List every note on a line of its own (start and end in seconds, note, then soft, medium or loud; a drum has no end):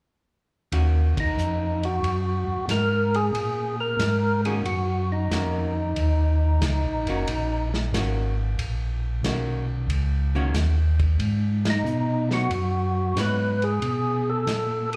0.72 1.14 D#2 medium
0.72 1.74 D#3 medium
0.72 1.74 A#3 soft
0.72 1.74 C#4 medium
0.72 1.74 F#4 medium
0.72 ride medium
1.17 1.27 D#2 soft
1.17 1.86 D#4 medium
1.17 kick medium
1.17 ride medium
1.37 2.00 F2 medium
1.37 hi-hat pedal medium
1.83 2.65 F#4 medium
1.83 ride soft
2.02 2.44 F#2 medium
2.02 ride medium
2.47 2.57 F#2 soft
2.68 3.31 G#2 medium
2.68 3.16 A#4 loud
2.68 snare medium
2.68 hi-hat pedal medium
2.68 ride medium
3.14 3.76 G#4 medium
3.14 ride soft
3.33 3.97 A#2 medium
3.33 ride medium
3.80 4.41 A#4 medium
3.99 4.62 G#2 medium
3.99 snare medium
3.99 hi-hat pedal medium
3.99 ride medium
4.45 4.63 D#3 medium
4.45 4.63 A#3 medium
4.45 4.64 C#4 medium
4.45 4.64 F#4 medium
4.45 4.54 G#4 medium
4.45 ride soft
4.65 5.29 F#2 medium
4.65 5.12 F#4 loud
4.65 ride medium
5.12 7.69 D#4 medium
5.31 5.94 F2 medium
5.31 5.72 D#3 medium
5.31 5.72 A#3 medium
5.31 5.72 C#4 medium
5.31 5.72 F#4 medium
5.31 snare medium
5.31 hi-hat pedal soft
5.31 ride medium
5.96 6.59 D#2 medium
5.96 ride medium
6.61 6.82 C#2 medium
6.61 snare medium
6.61 hi-hat pedal soft
6.61 ride medium
6.84 7.05 A#1 soft
7.05 7.25 F#1 medium
7.05 7.25 D#3 medium
7.05 7.26 A#3 medium
7.05 7.26 C#4 medium
7.05 ride soft
7.10 7.26 F#4 medium
7.27 7.91 A#1 medium
7.27 ride medium
7.74 snare medium
7.92 8.56 G#1 medium
7.92 8.34 D#3 medium
7.92 8.34 A#3 medium
7.92 8.34 C#4 medium
7.92 8.34 F#4 medium
7.92 snare medium
7.92 hi-hat pedal medium
7.92 ride medium
8.58 9.21 A#1 medium
8.58 ride medium
9.23 9.87 B1 medium
9.23 9.65 D#3 medium
9.23 9.65 A#3 medium
9.23 9.65 C#4 medium
9.23 9.65 F#4 medium
9.23 snare medium
9.23 hi-hat pedal soft
9.23 ride medium
9.88 10.52 C#2 medium
9.88 ride medium
10.35 10.53 D#3 medium
10.35 10.53 A#3 medium
10.35 10.53 C#4 medium
10.35 10.53 F#4 medium
10.54 11.18 D#2 medium
10.54 snare medium
10.54 hi-hat pedal medium
10.54 ride medium
10.99 kick medium
10.99 ride soft
11.19 11.83 G#2 medium
11.19 ride medium
11.65 snare medium
11.65 ride medium
11.70 12.29 D#4 medium
11.84 12.48 B2 medium
11.84 hi-hat pedal soft
12.31 12.49 F#3 medium
12.31 12.49 B3 medium
12.31 12.50 D#4 medium
12.31 13.20 F#4 medium
12.31 snare soft
12.50 13.14 F#2 medium
12.50 ride medium
13.16 13.80 G#2 medium
13.16 13.57 F#3 medium
13.16 13.58 B3 medium
13.16 13.58 D#4 medium
13.16 13.65 B4 medium
13.16 snare medium
13.16 hi-hat pedal medium
13.16 ride medium
13.62 14.30 G#4 medium
13.62 ride soft
13.82 14.46 B2 medium
13.82 ride medium
14.30 14.90 A4 medium
14.47 14.96 A#2 medium
14.47 snare medium
14.47 hi-hat pedal medium
14.47 ride medium
14.93 ride soft